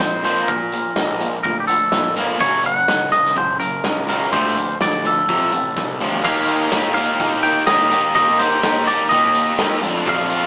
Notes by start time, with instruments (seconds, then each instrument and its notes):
Already playing: clean electric guitar C5
0.00 picked electric bass F2, distorted electric guitar A#2 F3, kick, snare
0.24 distorted electric guitar A#2 F3 A#3, clean electric guitar C5, closed hi-hat
0.48 distorted electric guitar A#2 F3, picked electric bass A#2, clean electric guitar A#4, kick
0.72 distorted electric guitar A#2 F3, closed hi-hat
0.96 picked electric bass A#1, distorted electric guitar A#2 F3, kick, snare
1.20 distorted electric guitar A#2 F3, closed hi-hat
1.43 picked electric bass D2, distorted electric guitar A#2 F3, clean electric guitar A#4, kick
1.60 clean electric guitar G4
1.67 distorted electric guitar A#2 F3, clean electric guitar A4, closed hi-hat
1.92 picked electric bass G1, distorted electric guitar A#2 F3, kick, snare
2.16 distorted electric guitar A#2 F3 A#3, closed hi-hat
2.40 picked electric bass F#1, distorted electric guitar F#2 C#3 F#3, clean electric guitar C#5, kick
2.64 distorted electric guitar F#2 C#3, clean electric guitar F#5, closed hi-hat
2.88 picked electric bass F#1, distorted electric guitar F#2 C#3, kick, snare
3.12 distorted electric guitar F#2 C#3, clean electric guitar D#5, closed hi-hat
3.25 snare
3.36 picked electric bass F#1, distorted electric guitar F#2 C#3, clean electric guitar C5, kick
3.60 distorted electric guitar F#2 C#3, clean electric guitar A#4, closed hi-hat
3.84 picked electric bass C#2, distorted electric guitar F#2 C#3, kick, snare
4.08 distorted electric guitar F#2 C#3 F#3, clean electric guitar A#4, closed hi-hat
4.32 picked electric bass D2, distorted electric guitar D3 F3 A3, clean electric guitar C5, kick
4.56 distorted electric guitar D3 F3, closed hi-hat
4.80 picked electric bass D2, distorted electric guitar D3 F3, clean electric guitar D5, kick, snare
5.04 distorted electric guitar D3 F3, clean electric guitar A4, closed hi-hat
5.28 distorted electric guitar F2 C3 F3, picked electric bass F2, kick
5.53 picked electric bass A1, distorted electric guitar F2 C3, closed hi-hat
5.76 picked electric bass C2, distorted electric guitar F2 C3, kick, snare
6.00 picked electric bass D2, distorted electric guitar F2 C3 F3, mid tom
6.13 floor tom
6.23 picked electric bass D#2, distorted electric guitar D#3 A#3 D#4 G4, clean electric guitar F5, kick, crash
6.48 distorted electric guitar A#3 D#4 G4, closed hi-hat
6.72 picked electric bass D#2, distorted electric guitar D#3 A#3 D#4 G4, kick, snare
6.94 distorted electric guitar D#4 G4, clean electric guitar F5, closed hi-hat
6.99 distorted electric guitar A#3
7.20 picked electric bass D#2, distorted electric guitar D#3 A#3 D#4 G4, kick
7.43 picked electric bass D#3, clean electric guitar G5, closed hi-hat
7.67 picked electric bass D#2, distorted electric guitar D#3 A#3 D#4, clean electric guitar D#5, kick, snare
7.71 distorted electric guitar G4
7.91 picked electric bass D#3, distorted electric guitar A#3 D#4 G4, closed hi-hat
8.14 picked electric bass D#2, distorted electric guitar D#3 A#3 D#4 G4, clean electric guitar D#5, kick
8.39 distorted electric guitar A#3 D#4 G4, clean electric guitar C5, snare, closed hi-hat
8.62 distorted electric guitar D#3 A#3 D#4 G4, picked electric bass D#3, kick, snare
8.86 distorted electric guitar A#3 D#4 G4, clean electric guitar D5, closed hi-hat
9.09 picked electric bass D#2, distorted electric guitar D#3 A#3 D#4, clean electric guitar D#5, kick
9.14 distorted electric guitar G4
9.35 closed hi-hat
9.58 picked electric bass D#2, distorted electric guitar D#3 A#3 D#4 G4, kick, snare
9.82 picked electric bass F2, distorted electric guitar F3 A3 D4 F4, closed hi-hat
10.06 distorted electric guitar F3 A3 D4 F4, clean electric guitar F5, kick
10.30 distorted electric guitar A3 D4 F4, closed hi-hat